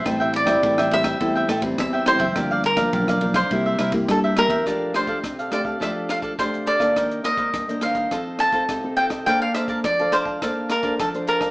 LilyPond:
<<
  \new Staff \with { instrumentName = "Cavaquinho" } { \time 4/4 \key f \major \tempo 4 = 104 c''8 d''4 e''4. e''8 c''8~ | c''8 bes'4~ bes'16 c''4~ c''16 a'8 bes'8~ | bes'8 c''4 d''8 e''8 f''8 c''8 d''8~ | d''8 ees''4 f''4 a''4 g''8 |
g''16 f''16 e''8 d''8 c''4 bes'8 a'8 bes'8 | }
  \new Staff \with { instrumentName = "Cavaquinho" } { \time 4/4 \key f \major <a' c'' e'' g''>16 <c'' e'' g''>16 r16 <c'' e'' g''>16 <a' c'' e'' g''>16 <c'' e'' g''>8 <c'' e'' g''>16 <a' c'' e'' g''>16 <c'' e'' g''>16 <a' c'' e'' g''>16 r8 <c'' e'' g''>16 <a' c'' e'' g''>16 <c'' e'' g''>16 | <g' bes' d'' f''>16 <bes' d'' f''>16 r16 <bes' d'' f''>16 <g' bes' d'' f''>16 <bes' d'' f''>8 <bes' d'' f''>16 <e' bes' c'' e''>16 <bes' c'' e''>16 <e' bes' c'' e''>16 r8 <bes' c'' e''>16 <e' bes' c'' e''>16 <bes' c'' e''>16 | <d' a' d'' f''>8 <d' a' d'' f''>16 <d' a' d'' f''>16 r16 <a' d'' f''>16 <d' a' d'' f''>16 <a' d'' f''>16 <d' a' d'' f''>8 <d' a' d'' f''>16 <d' a' d'' f''>16 <d' a' d'' f''>8 <d' a' d'' f''>16 <a' d'' f''>16 | <ees' bes' c'' ees''>8 <ees' bes' c'' ees''>16 <ees' bes' c'' ees''>16 r16 <bes' c'' ees''>16 <ees' bes' c'' ees''>16 <bes' c'' ees''>16 <f' a' c'' ees''>8 <f' a' c'' ees''>16 <f' a' c'' ees''>16 <f' a' c'' ees''>8 <f' a' c'' ees''>16 <a' c'' ees''>16 |
<bes' d'' f'' a''>8 <bes' d'' f'' a''>16 <bes' d'' f'' a''>16 r16 <d'' f'' a''>16 <bes' d'' f'' a''>16 <d'' f'' a''>16 <bes' d'' f'' a''>8 <bes' d'' f'' a''>16 <bes' d'' f'' a''>16 <bes' d'' f'' a''>8 <bes' d'' f'' a''>16 <d'' f'' a''>16 | }
  \new Staff \with { instrumentName = "Nylon-string guitar" } { \time 4/4 \key f \major << { <g c' e'>8. <g c' e'>8. <g c' e'>8 <g c' e'>8 r16 <g c' e'>8. <g c' e'>16 r16 | <f bes d'>8 r16 <f bes d'>8. <f bes d'>16 r16 <bes e' g'>8. <bes e' g'>8. <bes e' g'>16 r16 | <a d' g'>8 <a d' g'>8. r16 <a d' g'>8 <a d' g'>4 <a d' g'>8. <ees bes d'>16~ | <ees bes d'>8 <ees bes>8. <ees bes d'>8. <c' ees' a'>8. <c' ees' a'>8 <c' ees' a'>8. |
<d' a' c''>16 r16 <d' a' c''>8. <d' a' c''>8. <d' a' c''>8 r16 <d' a' c''>8 <d' a' c''>8. | } \\ { a,4 e4 a,4 e4 | g,4 d4 c4 g,4 | f4 c4 f4 c4 | c4 g,4 f4 c4 |
bes4 f4 bes4 f4 | } >> }
  \new Staff \with { instrumentName = "Fingered electric bass" } { \clef bass \time 4/4 \key f \major a,,4 a,,4 e,8 a,,8 e,8. ges,,16 | g,,4 b,,4 c,8 c,8 g,8. e,16 | r1 | r1 |
r1 | }
  \new DrumStaff \with { instrumentName = "Drums" } \drummode { \time 4/4 <bd cymr ss>8 cymr16 <bd cymr ss>16 <bd cymr>16 ss16 cymr16 <bd cymr ss>16 <bd cymr>8 <cymr ss>16 <bd cymr>16 <bd cymr ss>8 <cymr ss>16 <bd cymr>16 | <bd cymr ss>8 cymr16 <bd cymr ss>16 <bd cymr>16 ss16 cymr16 <bd cymr ss>16 <bd cymr>8 <cymr ss>16 <bd cymr>16 <bd cymr ss>8 <cymr ss>16 <bd cymr>16 | <hh bd ss>8 <hh ss>16 <hh bd>16 <hh bd ss>16 hh16 <hh ss>16 bd16 <hh bd ss>8 <hh ss>16 <hh bd>16 <hh bd ss>16 hh16 hh16 <bd ss>16 | <hh bd ss>16 hh16 <hh ss>16 <hh bd>16 <hh bd ss>16 hh16 <hh ss>16 <hh bd>16 <hh bd ss>8 <hh ss>16 <hh bd>16 <hh bd ss>8 hh16 <hh bd ss>16 |
<hh bd ss>8 <hh ss>16 <hh bd>16 <hh bd ss>16 hh16 <hh ss>16 bd16 <hh bd ss>8 <hh ss>16 <hh bd>16 <hh bd ss>16 hh16 hh16 <bd ss>16 | }
>>